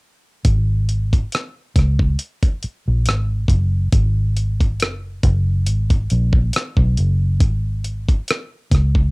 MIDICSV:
0, 0, Header, 1, 4, 480
1, 0, Start_track
1, 0, Key_signature, 5, "minor"
1, 0, Tempo, 869565
1, 247, Time_signature, 4, 2, 24, 8
1, 5030, End_track
2, 0, Start_track
2, 0, Title_t, "Fingered electric bass"
2, 0, Program_c, 0, 33
2, 252, Note_on_c, 0, 32, 80
2, 681, Note_off_c, 0, 32, 0
2, 975, Note_on_c, 0, 37, 76
2, 1187, Note_off_c, 0, 37, 0
2, 1588, Note_on_c, 0, 34, 76
2, 1695, Note_off_c, 0, 34, 0
2, 1695, Note_on_c, 0, 32, 84
2, 1907, Note_off_c, 0, 32, 0
2, 1926, Note_on_c, 0, 30, 70
2, 2143, Note_off_c, 0, 30, 0
2, 2171, Note_on_c, 0, 32, 81
2, 2656, Note_off_c, 0, 32, 0
2, 2656, Note_on_c, 0, 30, 87
2, 2868, Note_off_c, 0, 30, 0
2, 2893, Note_on_c, 0, 30, 81
2, 3137, Note_off_c, 0, 30, 0
2, 3137, Note_on_c, 0, 32, 92
2, 3348, Note_off_c, 0, 32, 0
2, 3377, Note_on_c, 0, 34, 80
2, 3588, Note_off_c, 0, 34, 0
2, 3742, Note_on_c, 0, 35, 84
2, 3838, Note_off_c, 0, 35, 0
2, 3856, Note_on_c, 0, 30, 85
2, 4092, Note_off_c, 0, 30, 0
2, 4092, Note_on_c, 0, 32, 94
2, 4521, Note_off_c, 0, 32, 0
2, 4814, Note_on_c, 0, 37, 89
2, 5030, Note_off_c, 0, 37, 0
2, 5030, End_track
3, 0, Start_track
3, 0, Title_t, "Muted fingered electric bass strokes"
3, 1457, Note_on_c, 9, 29, 39
3, 1513, Note_off_c, 9, 29, 0
3, 5030, End_track
4, 0, Start_track
4, 0, Title_t, "Drums"
4, 247, Note_on_c, 9, 42, 69
4, 248, Note_on_c, 9, 36, 91
4, 302, Note_off_c, 9, 42, 0
4, 303, Note_off_c, 9, 36, 0
4, 490, Note_on_c, 9, 42, 48
4, 545, Note_off_c, 9, 42, 0
4, 623, Note_on_c, 9, 36, 67
4, 624, Note_on_c, 9, 42, 37
4, 678, Note_off_c, 9, 36, 0
4, 680, Note_off_c, 9, 42, 0
4, 730, Note_on_c, 9, 42, 56
4, 744, Note_on_c, 9, 37, 89
4, 785, Note_off_c, 9, 42, 0
4, 799, Note_off_c, 9, 37, 0
4, 970, Note_on_c, 9, 36, 85
4, 971, Note_on_c, 9, 42, 63
4, 987, Note_on_c, 9, 37, 31
4, 1025, Note_off_c, 9, 36, 0
4, 1026, Note_off_c, 9, 42, 0
4, 1042, Note_off_c, 9, 37, 0
4, 1100, Note_on_c, 9, 36, 85
4, 1155, Note_off_c, 9, 36, 0
4, 1208, Note_on_c, 9, 42, 75
4, 1263, Note_off_c, 9, 42, 0
4, 1339, Note_on_c, 9, 36, 79
4, 1339, Note_on_c, 9, 42, 45
4, 1394, Note_off_c, 9, 36, 0
4, 1394, Note_off_c, 9, 42, 0
4, 1449, Note_on_c, 9, 42, 55
4, 1505, Note_off_c, 9, 42, 0
4, 1687, Note_on_c, 9, 42, 71
4, 1704, Note_on_c, 9, 37, 91
4, 1742, Note_off_c, 9, 42, 0
4, 1759, Note_off_c, 9, 37, 0
4, 1922, Note_on_c, 9, 36, 80
4, 1929, Note_on_c, 9, 42, 57
4, 1977, Note_off_c, 9, 36, 0
4, 1984, Note_off_c, 9, 42, 0
4, 2167, Note_on_c, 9, 36, 99
4, 2167, Note_on_c, 9, 42, 73
4, 2222, Note_off_c, 9, 36, 0
4, 2222, Note_off_c, 9, 42, 0
4, 2410, Note_on_c, 9, 42, 50
4, 2465, Note_off_c, 9, 42, 0
4, 2542, Note_on_c, 9, 36, 68
4, 2544, Note_on_c, 9, 42, 35
4, 2597, Note_off_c, 9, 36, 0
4, 2599, Note_off_c, 9, 42, 0
4, 2649, Note_on_c, 9, 42, 61
4, 2663, Note_on_c, 9, 37, 91
4, 2704, Note_off_c, 9, 42, 0
4, 2718, Note_off_c, 9, 37, 0
4, 2889, Note_on_c, 9, 36, 84
4, 2889, Note_on_c, 9, 42, 68
4, 2944, Note_off_c, 9, 36, 0
4, 2944, Note_off_c, 9, 42, 0
4, 3127, Note_on_c, 9, 42, 77
4, 3182, Note_off_c, 9, 42, 0
4, 3258, Note_on_c, 9, 42, 45
4, 3259, Note_on_c, 9, 36, 78
4, 3313, Note_off_c, 9, 42, 0
4, 3314, Note_off_c, 9, 36, 0
4, 3368, Note_on_c, 9, 42, 53
4, 3423, Note_off_c, 9, 42, 0
4, 3494, Note_on_c, 9, 36, 71
4, 3549, Note_off_c, 9, 36, 0
4, 3607, Note_on_c, 9, 42, 77
4, 3624, Note_on_c, 9, 37, 100
4, 3662, Note_off_c, 9, 42, 0
4, 3679, Note_off_c, 9, 37, 0
4, 3737, Note_on_c, 9, 36, 78
4, 3792, Note_off_c, 9, 36, 0
4, 3850, Note_on_c, 9, 42, 57
4, 3905, Note_off_c, 9, 42, 0
4, 4087, Note_on_c, 9, 36, 103
4, 4087, Note_on_c, 9, 42, 75
4, 4142, Note_off_c, 9, 42, 0
4, 4143, Note_off_c, 9, 36, 0
4, 4330, Note_on_c, 9, 42, 50
4, 4385, Note_off_c, 9, 42, 0
4, 4463, Note_on_c, 9, 36, 76
4, 4464, Note_on_c, 9, 42, 39
4, 4518, Note_off_c, 9, 36, 0
4, 4520, Note_off_c, 9, 42, 0
4, 4570, Note_on_c, 9, 42, 58
4, 4584, Note_on_c, 9, 37, 94
4, 4625, Note_off_c, 9, 42, 0
4, 4639, Note_off_c, 9, 37, 0
4, 4810, Note_on_c, 9, 36, 91
4, 4811, Note_on_c, 9, 42, 69
4, 4828, Note_on_c, 9, 37, 31
4, 4865, Note_off_c, 9, 36, 0
4, 4866, Note_off_c, 9, 42, 0
4, 4883, Note_off_c, 9, 37, 0
4, 4940, Note_on_c, 9, 36, 80
4, 4996, Note_off_c, 9, 36, 0
4, 5030, End_track
0, 0, End_of_file